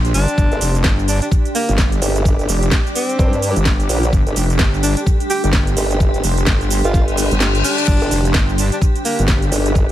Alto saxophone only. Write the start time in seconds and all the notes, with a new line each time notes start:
0.14 D4
1.08 D4
1.22 D4
1.55 A#3
2.95 C4
4.83 D4
4.97 D4
5.30 G4
5.44 G4
6.85 F4
7.64 D4
8.58 D4
8.72 D4
9.05 A#3